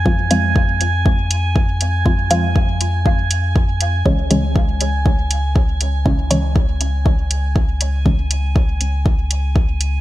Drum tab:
HH |-x-x-x-x|-x-x-x-x|-x-x-x-x|-x-x-x-x|
BD |o-o-o-o-|o-o-o-o-|o-o-o-o-|o-o-o-o-|

HH |-x-x-x-x|
BD |o-o-o-o-|